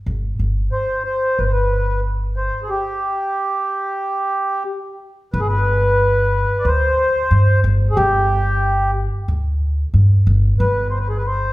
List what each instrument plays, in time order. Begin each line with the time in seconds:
0.06 upright bass G1
0.39 upright bass G1
0.72 accordion C5
1.04 accordion C5
1.38 upright bass G1, accordion B4
1.45 accordion C5
1.52 accordion B4
2.36 accordion C5
2.62 accordion G#4
2.69 accordion G4
5.33 upright bass G1, accordion B4
5.40 accordion G#4
5.48 accordion B4
6.59 accordion D5
6.65 upright bass D2, accordion C5
7.31 upright bass G2
7.64 upright bass G1
7.90 accordion G#4
7.96 upright bass G1, accordion G4
9.28 upright bass D2
9.94 upright bass G2
10.27 upright bass G1
10.60 upright bass G1, accordion B4
10.90 accordion C5
11.00 accordion B4
11.09 accordion G#4
11.17 accordion B4
11.26 accordion C5